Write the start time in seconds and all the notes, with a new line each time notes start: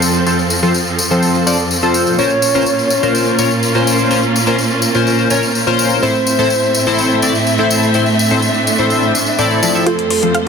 Already playing: F2 F3 C4 F4 A4 C5
0.02 tambourine
0.14 tambourine
0.26 F3 C4 F4 A4 C5, tambourine
0.39 tambourine
0.50 tambourine
0.63 F3 C4 F4 A4 C5, tambourine
0.74 tambourine
0.87 tambourine
0.99 tambourine
1.11 F3 C4 F4 A4 C5, tambourine
1.23 tambourine
1.35 tambourine
1.47 F3 C4 F4 A4 D5, tambourine
1.58 tambourine
1.71 tambourine
1.83 F3 C4 F4 A4 C5, tambourine
1.94 tambourine
2.07 tambourine
2.18 A#2 A#3 C#4 F4 A#4 C5 C#5, tambourine
2.30 tambourine
2.42 tambourine
2.55 A#2 C#4 F4 A#4 C5, tambourine
2.66 tambourine
2.79 tambourine
2.90 tambourine
3.03 A#2 C#4 F4 A#4 C5, tambourine
3.15 tambourine
3.27 tambourine
3.38 A#2 C#4 F4 A#4 C#5, tambourine
3.51 tambourine
3.63 tambourine
3.75 A#2 C#4 F4 A#4 C5, tambourine
3.87 tambourine
3.99 tambourine
4.11 A#2 C#4 F4 A#4 C5, tambourine
4.23 tambourine
4.36 tambourine
4.47 A#2 C#4 F4 A#4 C5, tambourine
4.58 tambourine
4.71 tambourine
4.82 tambourine
4.95 A#2 C#4 F4 A#4 C5, tambourine
5.07 tambourine
5.19 tambourine
5.30 A#2 C#4 F4 A#4 C#5, tambourine
5.43 tambourine
5.55 tambourine
5.67 A#2 C#4 F4 A#4 C5, tambourine
5.79 tambourine
5.90 tambourine
6.02 A2 A3 C4 E4 A4 C5 E5, tambourine
6.15 tambourine
6.27 tambourine
6.39 A2 C4 E4 A4 C5, tambourine
6.50 tambourine
6.63 tambourine
6.74 tambourine
6.86 A2 C4 E4 A4 C5, tambourine
6.98 tambourine
7.11 tambourine
7.22 A2 C4 E4 A4 D5, tambourine
7.35 tambourine
7.47 tambourine
7.58 A2 C4 E4 A4 C5, tambourine
7.71 tambourine
7.83 tambourine
7.94 A2 C4 D4 E4 A4 C5, tambourine
8.06 tambourine
8.19 tambourine
8.30 A2 C4 E4 A4 C5, tambourine
8.42 tambourine
8.54 tambourine
8.67 tambourine
8.78 A2 C4 E4 A4 C5, tambourine
8.90 tambourine
9.03 tambourine
9.15 tambourine
9.26 tambourine
9.39 A2 C4 E4 A4 D5, tambourine
9.51 tambourine
9.63 F3 C4 E4 A4 D5, tambourine
9.75 F3 C4 E4 A4 E5, tambourine
9.86 F2 F3 C4 F4 A4 C5, closed hi-hat, riser
9.99 closed hi-hat
10.10 C5, open hi-hat
10.23 F3 C4 F4 A4 C5, closed hi-hat
10.35 F5, closed hi-hat